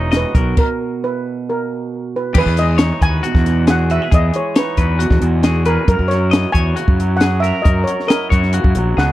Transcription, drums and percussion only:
0.12 snare, closed hi-hat
0.35 kick, closed hi-hat
0.57 kick, crash
2.35 kick, crash
2.46 kick
2.57 snare, closed hi-hat
2.78 snare, closed hi-hat
3.02 kick, closed hi-hat
3.24 closed hi-hat
3.35 kick, snare
3.46 snare, closed hi-hat
3.67 snare, closed hi-hat
3.90 closed hi-hat
4.12 kick, closed hi-hat
4.34 closed hi-hat
4.56 snare, closed hi-hat
4.77 kick, closed hi-hat
5.00 closed hi-hat
5.10 kick, snare
5.22 closed hi-hat
5.43 snare, closed hi-hat
5.65 closed hi-hat
5.88 kick, closed hi-hat
5.99 kick
6.11 snare, closed hi-hat
6.33 snare, closed hi-hat
6.54 kick, closed hi-hat
6.77 closed hi-hat
6.88 kick
7.00 closed hi-hat
7.20 snare, closed hi-hat
7.44 closed hi-hat
7.65 kick, closed hi-hat
7.87 closed hi-hat
8.00 snare
8.10 snare, closed hi-hat
8.32 kick, closed hi-hat
8.43 snare
8.53 closed hi-hat
8.64 kick
8.75 closed hi-hat
8.98 snare

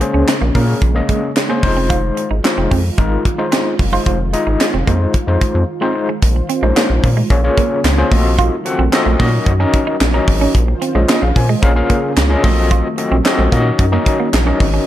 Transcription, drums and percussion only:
0.01 closed hi-hat
0.28 snare, clap, closed hi-hat
0.55 kick, open hi-hat
0.82 kick, closed hi-hat
1.09 kick, closed hi-hat
1.36 snare, clap, closed hi-hat
1.63 kick, open hi-hat
1.90 kick, closed hi-hat
2.17 closed hi-hat
2.44 snare, clap, closed hi-hat
2.71 kick, open hi-hat
2.98 kick, closed hi-hat
3.25 kick, closed hi-hat
3.52 snare, clap, closed hi-hat
3.79 kick, open hi-hat
4.06 kick, closed hi-hat
4.33 closed hi-hat
4.60 snare, clap, closed hi-hat
4.87 kick, closed hi-hat
5.14 kick, closed hi-hat
5.41 kick, closed hi-hat
6.22 kick, closed hi-hat
6.49 closed hi-hat
6.76 snare, clap, closed hi-hat
7.04 kick, open hi-hat
7.30 kick, closed hi-hat
7.57 kick, closed hi-hat
7.84 snare, clap, closed hi-hat
8.11 kick, open hi-hat
8.38 kick, closed hi-hat
8.66 closed hi-hat
8.93 snare, clap, closed hi-hat
9.20 kick, open hi-hat
9.46 kick, closed hi-hat
9.73 kick, closed hi-hat
10.00 snare, clap, closed hi-hat
10.28 kick, open hi-hat
10.55 kick, closed hi-hat
10.82 closed hi-hat
11.09 snare, clap, closed hi-hat
11.36 kick, open hi-hat
11.63 kick, closed hi-hat
11.90 kick, closed hi-hat
12.17 snare, clap, closed hi-hat
12.44 kick, open hi-hat
12.71 kick, closed hi-hat
12.98 closed hi-hat
13.25 snare, clap, closed hi-hat
13.52 kick, closed hi-hat
13.79 kick, closed hi-hat
14.06 kick, closed hi-hat
14.33 snare, clap, closed hi-hat
14.60 kick, open hi-hat

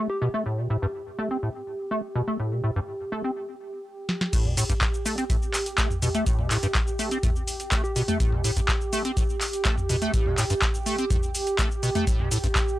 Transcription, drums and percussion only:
4.09 snare
4.21 snare
4.33 kick, closed hi-hat, crash, shaker
4.45 mid tom
4.57 open hi-hat, shaker
4.69 kick, closed hi-hat, shaker
4.81 kick, clap, shaker
4.94 shaker
5.06 open hi-hat, shaker
5.18 closed hi-hat, shaker
5.30 kick, closed hi-hat, shaker
5.42 shaker
5.54 clap, open hi-hat, shaker
5.66 closed hi-hat, shaker
5.78 kick, clap, closed hi-hat, shaker
5.90 mid tom, shaker
6.02 mid tom, open hi-hat, shaker
6.15 closed hi-hat, shaker
6.26 kick, closed hi-hat, shaker
6.39 mid tom
6.51 clap, open hi-hat, shaker
6.63 closed hi-hat, shaker
6.75 kick, clap, closed hi-hat, shaker
6.87 shaker
6.99 open hi-hat, shaker
7.11 closed hi-hat, shaker
7.23 kick, closed hi-hat, mid tom, shaker
7.36 shaker
7.47 open hi-hat, shaker
7.60 closed hi-hat, shaker
7.72 kick, clap, closed hi-hat, shaker
7.84 shaker
7.96 open hi-hat, shaker
8.08 closed hi-hat, mid tom, shaker
8.20 kick, closed hi-hat, shaker
8.32 mid tom
8.44 open hi-hat, shaker
8.56 kick, closed hi-hat, shaker
8.68 kick, clap, shaker
8.81 shaker
8.93 open hi-hat, shaker
9.05 closed hi-hat, shaker
9.17 kick, closed hi-hat, shaker
9.29 shaker
9.41 clap, open hi-hat, shaker
9.53 closed hi-hat, shaker
9.65 kick, clap, closed hi-hat, shaker
9.77 mid tom, shaker
9.89 mid tom, open hi-hat, shaker
10.02 closed hi-hat, shaker
10.14 kick, closed hi-hat, shaker
10.26 mid tom
10.38 clap, open hi-hat, shaker
10.50 closed hi-hat, shaker
10.62 kick, clap, closed hi-hat, shaker
10.75 shaker
10.86 open hi-hat, shaker
10.98 closed hi-hat, shaker
11.10 kick, closed hi-hat, mid tom, shaker
11.23 shaker
11.35 open hi-hat, shaker
11.47 closed hi-hat, shaker
11.59 kick, clap, closed hi-hat, shaker
11.71 shaker
11.83 open hi-hat, shaker
11.95 closed hi-hat, mid tom, shaker
12.07 kick, closed hi-hat, shaker
12.19 mid tom
12.31 open hi-hat, shaker
12.44 kick, closed hi-hat, shaker
12.55 kick, clap, shaker
12.68 shaker

